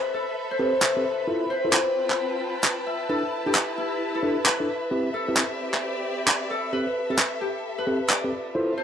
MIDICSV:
0, 0, Header, 1, 6, 480
1, 0, Start_track
1, 0, Tempo, 454545
1, 1347, Time_signature, 4, 2, 24, 8
1, 9330, End_track
2, 0, Start_track
2, 0, Title_t, "Analog synth pad"
2, 0, Program_c, 0, 89
2, 0, Note_on_c, 0, 71, 83
2, 0, Note_on_c, 0, 83, 78
2, 9330, Note_off_c, 0, 71, 0
2, 9330, Note_off_c, 0, 83, 0
2, 9330, End_track
3, 0, Start_track
3, 0, Title_t, "Harp"
3, 0, Program_c, 1, 46
3, 0, Note_on_c, 1, 69, 75
3, 0, Note_on_c, 1, 71, 82
3, 142, Note_off_c, 1, 69, 0
3, 147, Note_on_c, 1, 69, 80
3, 538, Note_on_c, 1, 72, 86
3, 601, Note_off_c, 1, 71, 0
3, 865, Note_on_c, 1, 76, 82
3, 1580, Note_off_c, 1, 72, 0
3, 1584, Note_on_c, 1, 72, 87
3, 2466, Note_off_c, 1, 69, 0
3, 2684, Note_off_c, 1, 76, 0
3, 3025, Note_on_c, 1, 76, 77
3, 3266, Note_on_c, 1, 69, 89
3, 3659, Note_on_c, 1, 67, 84
3, 3675, Note_off_c, 1, 72, 0
3, 3988, Note_on_c, 1, 64, 83
3, 4377, Note_off_c, 1, 69, 0
3, 4381, Note_on_c, 1, 69, 86
3, 4706, Note_on_c, 1, 71, 83
3, 4845, Note_off_c, 1, 76, 0
3, 5422, Note_off_c, 1, 69, 0
3, 5426, Note_on_c, 1, 69, 87
3, 6144, Note_off_c, 1, 67, 0
3, 6746, Note_off_c, 1, 64, 0
3, 6862, Note_off_c, 1, 69, 0
3, 6866, Note_on_c, 1, 69, 82
3, 6869, Note_off_c, 1, 71, 0
3, 7105, Note_on_c, 1, 71, 93
3, 7494, Note_off_c, 1, 69, 0
3, 7499, Note_on_c, 1, 69, 84
3, 7825, Note_on_c, 1, 67, 82
3, 8215, Note_off_c, 1, 71, 0
3, 8220, Note_on_c, 1, 71, 85
3, 8548, Note_on_c, 1, 74, 84
3, 9267, Note_on_c, 1, 72, 84
3, 9330, Note_off_c, 1, 67, 0
3, 9330, Note_off_c, 1, 69, 0
3, 9330, Note_off_c, 1, 71, 0
3, 9330, Note_off_c, 1, 72, 0
3, 9330, Note_off_c, 1, 74, 0
3, 9330, End_track
4, 0, Start_track
4, 0, Title_t, "String section"
4, 0, Program_c, 2, 48
4, 0, Note_on_c, 2, 69, 70
4, 0, Note_on_c, 2, 76, 72
4, 1104, Note_on_c, 2, 65, 76
4, 1210, Note_on_c, 2, 60, 80
4, 1457, Note_on_c, 2, 79, 66
4, 1999, Note_off_c, 2, 69, 0
4, 1999, Note_off_c, 2, 76, 0
4, 2078, Note_on_c, 2, 81, 77
4, 3263, Note_on_c, 2, 64, 84
4, 3266, Note_off_c, 2, 60, 0
4, 3266, Note_off_c, 2, 65, 0
4, 3570, Note_on_c, 2, 71, 78
4, 3904, Note_on_c, 2, 76, 89
4, 4048, Note_off_c, 2, 79, 0
4, 5188, Note_on_c, 2, 60, 70
4, 5416, Note_on_c, 2, 67, 79
4, 5719, Note_on_c, 2, 74, 83
4, 5870, Note_off_c, 2, 64, 0
4, 5870, Note_off_c, 2, 71, 0
4, 5871, Note_off_c, 2, 81, 0
4, 6868, Note_on_c, 2, 69, 72
4, 7648, Note_off_c, 2, 74, 0
4, 7649, Note_off_c, 2, 60, 0
4, 7649, Note_off_c, 2, 67, 0
4, 8791, Note_on_c, 2, 65, 77
4, 8973, Note_on_c, 2, 60, 78
4, 9184, Note_on_c, 2, 81, 88
4, 9330, Note_off_c, 2, 60, 0
4, 9330, Note_off_c, 2, 65, 0
4, 9330, Note_off_c, 2, 69, 0
4, 9330, Note_off_c, 2, 76, 0
4, 9330, Note_off_c, 2, 81, 0
4, 9330, End_track
5, 0, Start_track
5, 0, Title_t, "Tine electric piano"
5, 0, Program_c, 3, 4
5, 627, Note_on_c, 3, 69, 74
5, 628, Note_on_c, 3, 60, 83
5, 628, Note_on_c, 3, 67, 74
5, 628, Note_on_c, 3, 71, 90
5, 756, Note_off_c, 3, 60, 0
5, 756, Note_off_c, 3, 67, 0
5, 756, Note_off_c, 3, 69, 0
5, 756, Note_off_c, 3, 71, 0
5, 1020, Note_on_c, 3, 67, 63
5, 1020, Note_on_c, 3, 69, 65
5, 1020, Note_on_c, 3, 71, 77
5, 1021, Note_on_c, 3, 60, 70
5, 1093, Note_off_c, 3, 67, 0
5, 1093, Note_off_c, 3, 69, 0
5, 1093, Note_off_c, 3, 71, 0
5, 1094, Note_off_c, 3, 60, 0
5, 1347, Note_on_c, 3, 64, 82
5, 1347, Note_on_c, 3, 65, 77
5, 1347, Note_on_c, 3, 69, 75
5, 1348, Note_on_c, 3, 72, 87
5, 1530, Note_off_c, 3, 64, 0
5, 1530, Note_off_c, 3, 65, 0
5, 1530, Note_off_c, 3, 69, 0
5, 1530, Note_off_c, 3, 72, 0
5, 1739, Note_on_c, 3, 72, 92
5, 1740, Note_on_c, 3, 64, 87
5, 1740, Note_on_c, 3, 65, 76
5, 1740, Note_on_c, 3, 69, 76
5, 1880, Note_off_c, 3, 64, 0
5, 1880, Note_off_c, 3, 65, 0
5, 1880, Note_off_c, 3, 69, 0
5, 1880, Note_off_c, 3, 72, 0
5, 3267, Note_on_c, 3, 64, 69
5, 3267, Note_on_c, 3, 69, 69
5, 3268, Note_on_c, 3, 62, 76
5, 3268, Note_on_c, 3, 71, 82
5, 3396, Note_off_c, 3, 62, 0
5, 3396, Note_off_c, 3, 64, 0
5, 3396, Note_off_c, 3, 69, 0
5, 3396, Note_off_c, 3, 71, 0
5, 3659, Note_on_c, 3, 62, 71
5, 3659, Note_on_c, 3, 64, 66
5, 3659, Note_on_c, 3, 69, 67
5, 3659, Note_on_c, 3, 71, 78
5, 3733, Note_off_c, 3, 62, 0
5, 3733, Note_off_c, 3, 64, 0
5, 3733, Note_off_c, 3, 69, 0
5, 3733, Note_off_c, 3, 71, 0
5, 4466, Note_on_c, 3, 64, 73
5, 4466, Note_on_c, 3, 71, 89
5, 4467, Note_on_c, 3, 62, 86
5, 4467, Note_on_c, 3, 69, 80
5, 4595, Note_off_c, 3, 64, 0
5, 4595, Note_off_c, 3, 71, 0
5, 4596, Note_off_c, 3, 62, 0
5, 4596, Note_off_c, 3, 69, 0
5, 4859, Note_on_c, 3, 62, 69
5, 4859, Note_on_c, 3, 71, 76
5, 4860, Note_on_c, 3, 64, 62
5, 4860, Note_on_c, 3, 69, 63
5, 4933, Note_off_c, 3, 62, 0
5, 4933, Note_off_c, 3, 64, 0
5, 4933, Note_off_c, 3, 69, 0
5, 4933, Note_off_c, 3, 71, 0
5, 5187, Note_on_c, 3, 60, 82
5, 5187, Note_on_c, 3, 64, 74
5, 5187, Note_on_c, 3, 67, 80
5, 5187, Note_on_c, 3, 71, 95
5, 5370, Note_off_c, 3, 60, 0
5, 5370, Note_off_c, 3, 64, 0
5, 5370, Note_off_c, 3, 67, 0
5, 5370, Note_off_c, 3, 71, 0
5, 5580, Note_on_c, 3, 60, 82
5, 5580, Note_on_c, 3, 71, 91
5, 5581, Note_on_c, 3, 64, 81
5, 5581, Note_on_c, 3, 67, 80
5, 5720, Note_off_c, 3, 60, 0
5, 5720, Note_off_c, 3, 64, 0
5, 5720, Note_off_c, 3, 67, 0
5, 5720, Note_off_c, 3, 71, 0
5, 7107, Note_on_c, 3, 60, 79
5, 7107, Note_on_c, 3, 69, 72
5, 7107, Note_on_c, 3, 71, 82
5, 7108, Note_on_c, 3, 67, 70
5, 7236, Note_off_c, 3, 60, 0
5, 7236, Note_off_c, 3, 67, 0
5, 7236, Note_off_c, 3, 69, 0
5, 7236, Note_off_c, 3, 71, 0
5, 7500, Note_on_c, 3, 60, 72
5, 7500, Note_on_c, 3, 67, 67
5, 7500, Note_on_c, 3, 71, 82
5, 7501, Note_on_c, 3, 69, 66
5, 7573, Note_off_c, 3, 71, 0
5, 7574, Note_off_c, 3, 60, 0
5, 7574, Note_off_c, 3, 67, 0
5, 7574, Note_off_c, 3, 69, 0
5, 8308, Note_on_c, 3, 69, 77
5, 8308, Note_on_c, 3, 71, 96
5, 8309, Note_on_c, 3, 60, 85
5, 8309, Note_on_c, 3, 67, 77
5, 8436, Note_off_c, 3, 69, 0
5, 8436, Note_off_c, 3, 71, 0
5, 8437, Note_off_c, 3, 60, 0
5, 8437, Note_off_c, 3, 67, 0
5, 8702, Note_on_c, 3, 60, 73
5, 8702, Note_on_c, 3, 67, 65
5, 8702, Note_on_c, 3, 69, 66
5, 8702, Note_on_c, 3, 71, 76
5, 8774, Note_off_c, 3, 60, 0
5, 8775, Note_off_c, 3, 67, 0
5, 8775, Note_off_c, 3, 69, 0
5, 8775, Note_off_c, 3, 71, 0
5, 9029, Note_on_c, 3, 64, 83
5, 9029, Note_on_c, 3, 65, 79
5, 9029, Note_on_c, 3, 69, 82
5, 9030, Note_on_c, 3, 72, 95
5, 9211, Note_off_c, 3, 64, 0
5, 9211, Note_off_c, 3, 65, 0
5, 9211, Note_off_c, 3, 69, 0
5, 9211, Note_off_c, 3, 72, 0
5, 9330, End_track
6, 0, Start_track
6, 0, Title_t, "Drums"
6, 868, Note_on_c, 9, 39, 118
6, 973, Note_off_c, 9, 39, 0
6, 1827, Note_on_c, 9, 39, 111
6, 1933, Note_off_c, 9, 39, 0
6, 2220, Note_on_c, 9, 39, 53
6, 2325, Note_off_c, 9, 39, 0
6, 2787, Note_on_c, 9, 39, 113
6, 2893, Note_off_c, 9, 39, 0
6, 3747, Note_on_c, 9, 39, 106
6, 3853, Note_off_c, 9, 39, 0
6, 4707, Note_on_c, 9, 39, 107
6, 4813, Note_off_c, 9, 39, 0
6, 5667, Note_on_c, 9, 39, 107
6, 5773, Note_off_c, 9, 39, 0
6, 6061, Note_on_c, 9, 39, 53
6, 6166, Note_off_c, 9, 39, 0
6, 6628, Note_on_c, 9, 39, 106
6, 6734, Note_off_c, 9, 39, 0
6, 7588, Note_on_c, 9, 39, 109
6, 7693, Note_off_c, 9, 39, 0
6, 8549, Note_on_c, 9, 39, 107
6, 8654, Note_off_c, 9, 39, 0
6, 9330, End_track
0, 0, End_of_file